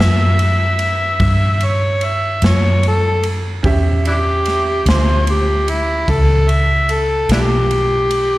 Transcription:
Already playing: C#4 G4 B4 E5
0.00 F#2, snare
0.39 ride
0.79 ride
1.20 G2, kick, ride
1.61 ride
1.65 C#5
2.01 E5, ride
2.42 F#2, snare, ride
2.46 C#5
2.83 ride
2.88 A4
3.23 ride
3.63 E2 C#4 G4 E5, kick, ride
4.05 D4 E4 G4, ride
4.45 snare, ride
4.86 D2 C5, snare, ride
5.27 G4, ride
5.68 E4, ride
6.08 C#2 A4, kick, ride
6.49 E5, ride
6.89 A4, ride
7.29 B1 D4 E4 G4, snare, ride
7.71 ride
8.11 ride

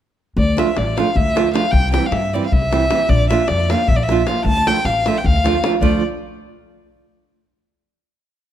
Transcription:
0.36 D2 D5, davul low
0.57 F3 A3 D4 F4 E5, davul high
0.77 A1 D5, davul high
0.97 F3 A3 D4 F4 F5, davul high
1.07 davul high
1.16 D2 E5, davul low
1.27 davul high
1.35 F3 A3 D4 F4, davul high
1.53 F3 A3 D4 F4 F5, davul high
1.65 davul high
1.71 C2 G5, davul low
1.92 E3 G3 C4 E4 G5, davul high
2.06 F5
2.11 G2 E5, davul high
2.22 davul high
2.33 E3 G3 C4 E4 D5
2.43 F5, davul high
2.52 C2 E5, davul low
2.62 davul high
2.71 E3 G3 C4 E4, davul high
2.90 E3 G3 C4 E4, davul high
2.99 davul high
3.09 A#1 D5, davul low
3.29 F3 A#3 D4 F4 E5, davul high
3.48 F2 D5, davul high
3.59 davul high
3.70 F3 A#3 D4 F4 F5, davul high
3.80 davul high
3.88 A#1 E5, davul low
3.96 D5, davul high
4.03 E5
4.09 F3 A#3 D4 F4, davul high
4.26 F3 A#3 D4 F4 F5, davul high
4.36 davul high
4.45 D2 A5, davul low
4.57 davul high
4.67 F3 A3 D4 F4 G5, davul high
4.85 A1 F5, davul high
4.96 davul high
5.06 F3 A3 D4 F4 E5, davul high
5.16 G5, davul high
5.24 D2 F5, davul low
5.36 davul high
5.44 F3 A3 D4 F4, davul high
5.55 davul high
5.64 F3 A3 D4 F4, davul high
5.73 davul high
5.81 D2 F3 A3 D4 F4 D5, davul low

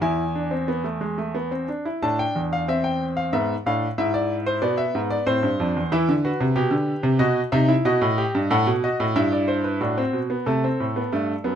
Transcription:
0.01 E2 E4 G#5
0.35 D4
0.51 C4
0.68 B3
0.84 A3
1.01 G#3
1.18 A3
1.35 B3
1.51 C4
1.68 D4
1.85 E4
2.02 A2 D4 A5
2.19 G5
2.35 E2
2.53 F5
2.68 C4 E5
2.84 G5
3.17 F5
3.33 G#2 B3 E5
3.66 A2 D4 F5
3.98 G#2 E4 E5
4.14 D5
4.46 C5
4.62 B2 B3 D5
4.78 E5
4.95 G#2
5.10 D5
5.27 A2 C4 C5
5.43 G2
5.60 F2 D4
5.76 E2
5.92 E3 E4 E5
6.09 D3
6.25 F#4 B4
6.40 C3
6.56 B2 G4
6.71 D3
7.03 C3
7.19 B2 F#4 D#5
7.52 C3 D#4 E5
7.69 E4
7.85 B2 F#4 D#5
8.01 A2
8.18 G4
8.35 G2
8.50 A2 A4 F#5
8.66 B2
8.84 F#4 D#5
9.00 A2
9.16 G2 E4 E5
9.32 D5
9.48 C5
9.64 B4
9.81 A2 D4 F#4
9.98 C4
10.13 B2
10.30 B3
10.46 C3 A3 A4
10.64 C4
10.80 A2
10.96 B3
11.12 G2 A3
11.44 F#2 B3

